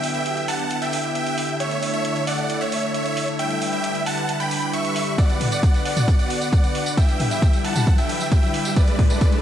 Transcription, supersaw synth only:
Already playing: E5 G5
0.15 E5 G5
0.48 F#5 A5
0.82 E5 G5
1.15 E5 G5
1.60 C#5 E5
1.94 C#5 E5
2.27 D5 F#5
2.61 C#5 E5
2.94 C#5 E5
3.39 E5 G5
3.73 E5 G5
4.06 F#5 A5
4.40 G5 B5
4.73 E5 C#6
5.18 D5 F#5
5.52 D5 F#5
5.85 D5 F#5
6.19 D5 F#5
6.53 D5 F#5
6.98 E5 G5
7.31 E5 G5
7.65 F#5 A5
7.98 E5 G5
8.32 E5 G5
8.77 B4 D5
9.10 B4 D5

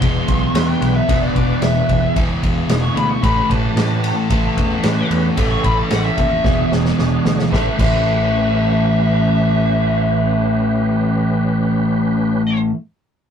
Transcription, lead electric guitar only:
Already playing: C6
0.68 G5
0.96 E5
1.22 D5
1.62 E5
2.82 C#6
2.96 B5
3.09 C#6
3.22 B5
3.50 A5
5.51 C#6
5.64 B5
5.77 A5
5.91 F#5
6.04 E5
6.17 E5
7.54 E5
7.81 E5

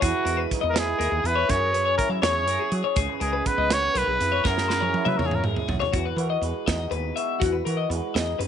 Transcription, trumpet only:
0.02 F#4
0.70 A#4
0.79 G#4
1.26 B4
1.50 C#5
1.98 A#4
2.23 C#5
3.21 G#4
3.47 B4
3.73 C#5
3.98 B4
4.47 A#4
5.08 B4
5.17 A#4
5.26 G#4
5.35 A#4

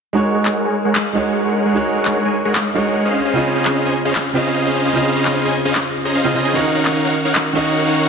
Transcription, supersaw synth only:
0.15 G#3 G#4 A#4 C#5 F#5
0.35 G#3 G#4 A#4 C#5 F#5
0.65 G#3 G#4 A#4 C#5 G#5
0.85 G#3 G#4 A#4 C#5 F#5
0.95 G#3 G#4 A#4 C#5 F5
1.15 G#3 G#4 A#4 C#5 F#5
1.45 G#3 G#4 A#4 C#5 F#5
1.65 G#3 G#4 A#4 C#5 F#5
1.75 G#3 G#4 A#4 C#5 F#5
1.95 G#3 G#4 A#4 C#5 F#5
2.25 G#3 G#4 A#4 C#5 G#5
2.45 G#3 G#4 A#4 C#5 F#5
2.55 G#3 G#4 A#4 C#5 F5
2.75 G#3 G#4 A#4 C#5 F#5
3.05 C#4 G#4 C5 D#5 F5
3.25 C#4 G#4 C5 D#5 F5
3.35 C#4 G#4 C5 D#5 F5
3.55 C#4 G#4 C5 D#5 F5
3.85 C#4 G#4 C5 D#5 G#5
4.05 C#4 G#4 C5 D#5 F5
4.15 C#4 G#4 C5 D#5 F5
4.35 C#4 G#4 C5 D#5 F5
4.65 C#4 G#4 C5 D#5 F5
4.85 C#4 G#4 C5 D#5 F5
4.95 C#4 G#4 C5 D#5 F5
5.15 C#4 G#4 C5 D#5 F5
5.45 C#4 G#4 C5 D#5 G#5
5.65 C#4 G#4 C5 D#5 F5
5.75 C#4 G#4 C5 D#5 F5
6.05 C#4 G#4 C5 D#5 A#5
6.15 C#4 G#4 C5 D#5 F5
6.35 C#4 G#4 C5 D#5 A#5
6.45 C#4 G#4 C5 D#5 G#5
6.55 D#4 A#4 C#5 F5 F#5
6.75 D#4 A#4 C#5 F5 F#5
7.05 D#4 A#4 C#5 F5 F#5
7.25 D#4 A#4 C#5 F5 F#5
7.35 D#4 A#4 C#5 F5 F#5
7.55 D#4 A#4 C#5 F5 F#5
7.85 D#4 A#4 C#5 F5 F#5
8.05 D#4 A#4 C#5 F5 F#5

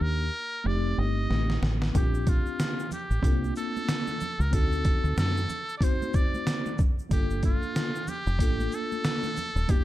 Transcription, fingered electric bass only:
0.01 D#2
0.66 F1
0.98 G1
1.30 A1
1.62 A1
1.95 A#1
3.11 A1
3.23 C2
4.40 C#2
4.53 D2
5.04 D2
5.17 F#2
7.11 G1
8.27 F1
8.39 A1
9.56 D#1
9.69 E1

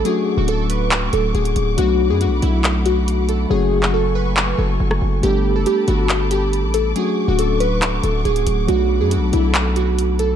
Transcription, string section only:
Already playing: A3 D6
0.05 F#5 C#6
1.78 A3 B5
3.50 G#5 C#6
5.23 A4 A5 B5 D6
6.96 A3 F#5 C#6
8.69 A4 B5

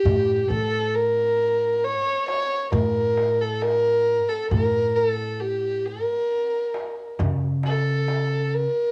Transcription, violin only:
Already playing: G4
0.51 A4
0.95 A#4
1.85 C#5
2.29 C#5
2.74 A#4
3.41 A4
3.62 A#4
4.29 A4
4.51 A4
4.63 A#4
4.96 A#4
5.09 A4
5.41 G4
5.86 A#4
7.66 A4
8.54 A#4

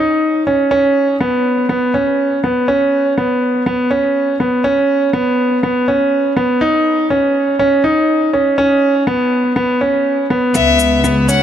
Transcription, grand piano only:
Already playing: D#4
0.47 C#4
0.71 C#4
1.21 B3
1.69 B3
1.94 C#4
2.44 B3
2.68 C#4
3.18 B3
3.66 B3
3.91 C#4
4.40 B3
4.64 C#4
5.13 B3
5.63 B3
5.88 C#4
6.37 B3
6.61 D#4
7.10 C#4
7.59 C#4
7.84 D#4
8.33 C#4
8.58 C#4
9.07 B3
9.56 B3
9.81 C#4
10.30 B3
10.55 B3
11.04 B3
11.29 C#4

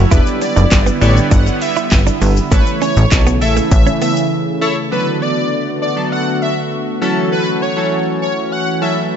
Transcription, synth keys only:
0.11 B3 D4 E4 G4 D5
0.71 B3 D4 E4 G4 D5
1.01 B3 D4 E4 G4 C#5
2.51 E4 A4 C#5
3.11 E4 A4 C#5
3.41 E4 A4 E5
4.61 E4 A4 C#5
4.91 F#3 B3 D4 A4
5.81 D4 A4
5.96 F#3 B3 D4 A4
7.01 F#3 C#4 E4 A4
7.76 F#3 C#4 E4 A4
8.81 F#3 C#4 E4 A4

